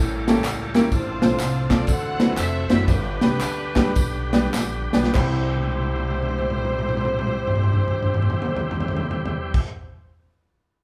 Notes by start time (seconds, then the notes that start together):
Already playing: A1 A2 G3 A#3 C4 C#4 E4 A4
0.28 A#3 C#4 E4 G4 A4, snare, ride, tambourine
0.44 C#2, clap, ride, tambourine
0.74 A#3 C#4 E4 G4 A#4, snare, ride, tambourine
0.92 A1 A2 F3 C4 D4 F4 C5, kick, ride, tambourine
1.22 B1 C4 D4 F4 A4 C5, snare, ride, tambourine
1.40 C2, clap, ride, tambourine
1.70 C4 D4 F4 A4 D5, kick, snare, clap, ride, tambourine
1.87 D2 D3 E3 A3 C4 F#4 A4 C5 F#5, kick, ride, tambourine
2.19 C4 D4 E4 F#4 B4, snare, ride, tambourine
2.37 F1 E5, clap, ride, tambourine
2.69 F#1 C4 D4 E4 F#4 C5 E5, snare, ride, tambourine
2.88 G1 G2 D3 G3 B3 D4 G4 B4, kick, ride, tambourine
3.21 C2 G3 B3 D4 G4 B4, snare, ride, tambourine
3.41 D2, clap, ride, tambourine
3.76 G3 B3 D4 G4 B4, kick, snare, clap, tambourine
3.95 B1, kick, ride, tambourine
4.33 G3 B3 D4 G4 B4, snare, ride, tambourine
4.54 A#1, snare, clap, tambourine
4.93 B1 G3 B3 D4 G4 B4, snare, tambourine
5.04 snare
5.13 C2 E3 G3 C4 E4 G4 C5, kick, clap, crash
5.18 B5
5.56 high tom
5.64 high tom
5.72 high tom
5.81 high tom
5.96 high tom
6.10 high tom
6.22 high tom
6.31 high tom
6.38 high tom
6.50 mid tom
6.65 mid tom
6.79 mid tom
6.89 mid tom
6.97 mid tom
7.05 mid tom
7.19 mid tom
7.27 mid tom
7.47 mid tom
7.55 mid tom
7.64 mid tom
7.73 mid tom
7.88 mid tom
8.03 mid tom
8.14 mid tom
8.22 mid tom
8.30 mid tom
8.42 floor tom
8.57 floor tom
8.71 floor tom
8.80 floor tom
8.88 floor tom
8.97 floor tom
9.11 floor tom
9.26 floor tom
9.54 kick, crash